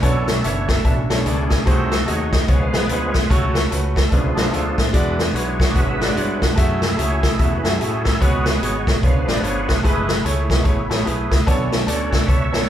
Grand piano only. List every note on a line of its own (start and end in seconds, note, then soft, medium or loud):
0.02 0.65 B2 medium
0.02 0.31 B3 medium
0.02 0.31 D4 medium
0.02 0.31 A4 medium
0.02 0.31 C#5 loud
0.43 0.72 B3 medium
0.43 0.72 D4 medium
0.43 0.72 A4 medium
0.43 0.73 E5 medium
0.84 1.00 B3 medium
0.84 1.00 D4 medium
0.84 1.00 A4 medium
0.84 1.00 E5 medium
1.10 1.19 B3 medium
1.10 1.19 D4 medium
1.10 1.20 A4 medium
1.10 1.20 C#5 medium
1.25 1.54 B3 medium
1.25 1.54 D4 medium
1.25 1.54 A4 medium
1.25 1.55 D5 medium
1.66 2.29 C3 medium
1.66 1.95 A3 medium
1.66 1.95 F#4 medium
1.66 1.95 G#4 medium
1.66 1.95 C5 medium
2.06 2.35 A3 medium
2.06 2.36 F#4 medium
2.06 2.36 G#4 medium
2.06 2.36 D#5 medium
2.48 3.11 C#3 medium
2.48 2.63 B3 medium
2.48 2.64 F4 medium
2.48 2.64 G#4 medium
2.48 2.64 C#5 medium
2.73 2.83 B3 medium
2.73 2.83 F4 medium
2.73 2.83 G#4 medium
2.73 2.83 B4 medium
2.89 3.18 B3 medium
2.89 3.18 F4 medium
2.89 3.18 G#4 medium
2.89 3.18 B4 medium
3.30 3.93 C#3 medium
3.30 3.59 A3 medium
3.30 3.59 C#4 medium
3.30 3.59 F#4 medium
3.30 3.59 C#5 loud
3.71 3.99 A3 medium
3.71 4.00 C#4 medium
3.71 4.00 F#4 medium
3.71 4.00 B4 medium
4.10 4.74 C#3 medium
4.10 4.27 A3 medium
4.10 4.27 D4 medium
4.10 4.27 F4 medium
4.10 4.28 B4 medium
4.36 4.46 A3 medium
4.36 4.46 D4 medium
4.36 4.46 F4 medium
4.36 4.47 B4 medium
4.52 4.81 A3 medium
4.52 4.81 D4 medium
4.52 4.81 F4 medium
4.52 4.82 A4 medium
4.93 5.56 E3 medium
4.93 5.22 G#3 medium
4.93 5.22 E4 medium
4.93 5.22 F#4 medium
4.93 5.23 D5 medium
5.34 5.63 G#3 medium
5.34 5.63 E4 medium
5.34 5.63 F#4 medium
5.34 5.64 B4 medium
5.75 5.91 G#3 medium
5.75 5.91 E4 medium
5.75 5.91 F#4 medium
5.75 5.91 C#5 medium
6.00 6.10 G#3 medium
6.00 6.10 E4 medium
6.00 6.11 F#4 medium
6.00 6.11 D5 medium
6.15 6.44 G#3 medium
6.15 6.45 E4 medium
6.15 6.45 F#4 medium
6.15 6.45 D5 medium
6.56 6.85 A3 medium
6.56 6.85 F#4 medium
6.56 6.86 G#4 medium
6.56 6.86 E5 medium
6.97 7.26 A3 medium
6.97 7.26 F#4 medium
6.97 7.27 G#4 medium
6.97 7.27 E5 medium
7.39 7.54 A3 medium
7.39 7.54 F#4 medium
7.39 7.55 G#4 medium
7.39 7.55 E5 medium
7.64 7.74 A3 medium
7.64 7.74 F#4 medium
7.64 7.74 G#4 medium
7.64 7.74 E5 medium
7.80 8.08 A3 medium
7.80 8.08 F#4 medium
7.80 8.09 G#4 medium
7.80 8.09 E5 medium
8.20 8.83 C#3 medium
8.20 8.49 B3 medium
8.20 8.49 F#4 medium
8.20 8.49 G#4 medium
8.20 8.50 C#5 loud
8.62 8.90 B3 medium
8.62 8.91 F#4 medium
8.62 8.91 G#4 medium
8.62 8.91 C#5 medium
9.02 9.65 C#3 medium
9.02 9.18 B3 medium
9.02 9.18 D4 medium
9.02 9.18 F4 medium
9.02 9.18 C#5 medium
9.27 9.37 B3 medium
9.27 9.37 D4 medium
9.27 9.37 F4 medium
9.27 9.38 D5 medium
9.42 9.71 B3 medium
9.42 9.71 D4 medium
9.42 9.72 F4 medium
9.42 9.72 C#5 medium
9.83 10.12 A3 medium
9.83 10.13 E4 medium
9.83 10.13 G#4 medium
9.83 10.13 B4 medium
10.24 10.53 A3 medium
10.24 10.53 E4 medium
10.24 10.53 G#4 medium
10.24 10.54 C#5 medium
10.64 10.80 A3 medium
10.64 10.80 E4 medium
10.64 10.80 G#4 medium
10.64 10.81 C#5 medium
10.89 11.00 A3 medium
10.89 11.00 E4 medium
10.89 11.00 G#4 medium
10.89 11.00 C#5 medium
11.05 11.34 A3 medium
11.05 11.34 E4 medium
11.05 11.34 G#4 medium
11.05 11.35 B4 medium
11.46 12.09 B2 medium
11.46 11.75 B3 medium
11.46 11.75 D4 medium
11.46 11.75 A4 medium
11.46 11.76 C#5 medium
11.87 12.16 B3 medium
11.87 12.16 D4 medium
11.87 12.16 A4 medium
11.87 12.16 D5 medium
12.27 12.43 B3 medium
12.27 12.43 D4 medium
12.27 12.44 A4 medium
12.27 12.44 C#5 medium
12.52 12.62 B3 medium
12.52 12.62 D4 medium
12.52 12.63 A4 medium
12.52 12.63 C#5 medium